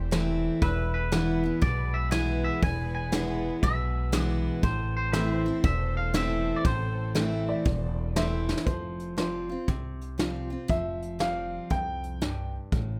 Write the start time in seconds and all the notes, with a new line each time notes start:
Already playing: E1 E2 E3 A3 C4 G4 C5
0.11 E3 A3 C4 E4, snare, open hi-hat
0.62 E1 E2 G#3 B3 G#4 B4 E5, kick, open hi-hat
0.94 B4
1.12 E3 G#3 B3 E4, snare
1.44 B3 E4
1.62 B1 B2 D5, kick, open hi-hat
1.94 E5
2.11 E3 G#3 B3 E4 G#5, snare, open hi-hat
2.44 E5
2.62 E1 E2 G#5, kick, open hi-hat
2.95 G#5
3.12 E3 G#3 B3 E4, snare
3.63 B1 B2 E5, kick, open hi-hat
4.12 E3 G#3 B3 E4, snare, open hi-hat
4.22 D5
4.63 A1 A2 E3 A3 C4 A4 C5, kick, open hi-hat
4.97 C5
5.12 E3 A3 C4 E4 B4 E5, snare, open hi-hat
5.32 C5
5.46 C4 E4
5.64 E1 E2 E5, kick, open hi-hat
5.97 F5
6.14 E3 A3 C4 E4 E5, snare, open hi-hat
6.56 D5
6.65 A1 A2 C5, kick, open hi-hat
7.15 E3 A3 C4 E4, snare, open hi-hat
7.49 D5
7.65 E1 E2, kick, open hi-hat
8.16 E3 A3 C4 E4 C5 E5, snare, open hi-hat
8.49 snare
8.57 snare
8.66 F1 F3 C5, kick, closed hi-hat
8.99 closed hi-hat
9.17 F3 G3 C4 F4 C5, snare, closed hi-hat
9.49 C4 F4
9.68 C2 C3, kick, closed hi-hat
10.01 closed hi-hat
10.18 F3 G3 C4 F4, snare, closed hi-hat
10.50 C4 F4
10.68 F1 F3 E5, kick, closed hi-hat
11.02 closed hi-hat
11.19 F3 G3 C4 F4 F5, snare, closed hi-hat
11.70 C2 F2 G5, kick, closed hi-hat
12.03 closed hi-hat
12.21 G2, snare, closed hi-hat
12.72 A1 A2, kick, closed hi-hat